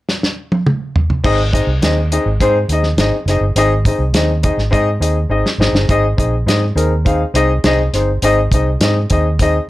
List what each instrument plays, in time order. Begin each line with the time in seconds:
0.09 snare
0.23 snare
0.52 high tom
0.66 mid tom
0.96 floor tom
1.10 floor tom
1.24 fingered electric bass G#1, grand piano C4 D#4 G#4 D#5, kick, crash
1.52 grand piano C4 D#4 G#4 D#5, kick, closed hi-hat
1.67 fingered electric bass C2
1.81 fingered electric bass D#2, grand piano C4 D#4 G#4 D#5, snare, closed hi-hat
2.12 grand piano C4 D#4 G#4 D#5, closed hi-hat
2.26 fingered electric bass G#1
2.40 fingered electric bass G#2, grand piano C4 D#4 G#4 C5, kick, closed hi-hat
2.69 fingered electric bass D#2, grand piano C4 D#4 G#4 D#5, closed hi-hat
2.83 snare
2.97 fingered electric bass G#1, grand piano C4 D#4 G#4 D#5, snare, closed hi-hat
3.26 fingered electric bass F#1, grand piano C4 D#4 G#4, snare, closed hi-hat
3.30 grand piano D#5
3.41 fingered electric bass G1
3.55 fingered electric bass G#1, grand piano C4 D#4 G#4 D#5, closed hi-hat
3.85 grand piano C4 D#4 G#4 D#5, kick, closed hi-hat
3.99 fingered electric bass C2
4.13 fingered electric bass D#2, grand piano C4 D#4 G#4 D#5, snare, closed hi-hat
4.43 grand piano C4 D#4 G#4 D#5, kick, closed hi-hat
4.57 fingered electric bass G#1, snare
4.71 fingered electric bass G#2, grand piano C4 D#4 G#4 D#5, kick, closed hi-hat
5.00 fingered electric bass D#2, grand piano C4 D#4 G#4 D#5, closed hi-hat
5.29 fingered electric bass G#1, grand piano C4 D#4 G#4 D#5
5.46 snare
5.58 fingered electric bass G#1, grand piano C4 D#4 G#4 D#5, snare
5.73 fingered electric bass G1, snare
5.88 fingered electric bass G#1, grand piano C4 D#4 G#4 D#5, kick, closed hi-hat
6.17 fingered electric bass A#1, grand piano C4 D#4 G#4 D#5, kick, closed hi-hat
6.46 fingered electric bass G#2, grand piano C4 D#4 G#4 D#5, snare, closed hi-hat
6.75 fingered electric bass D#2, grand piano C4 D#4 G#4 A#4, closed hi-hat
7.05 grand piano C4 D#4 G#4 F5, kick, closed hi-hat
7.34 fingered electric bass C2, grand piano C4 D#4 G#4 D#5, closed hi-hat
7.64 fingered electric bass C2, grand piano C4 D#4 G#4 D#5, snare, closed hi-hat
7.93 fingered electric bass G1, grand piano C4 D#4 G#4 C5, snare, closed hi-hat
8.22 fingered electric bass G#1, grand piano C4 D#4 G#4 D#5, closed hi-hat
8.51 fingered electric bass C2, grand piano C4 D#4 G#4 D#5, kick, closed hi-hat
8.80 fingered electric bass G#2, grand piano C4 D#4 G#4 D#5, snare, closed hi-hat
9.10 fingered electric bass D#2, grand piano C4 D#4 G#4 D#5, kick, closed hi-hat
9.39 grand piano C4 D#4 G#4 D#5, kick, closed hi-hat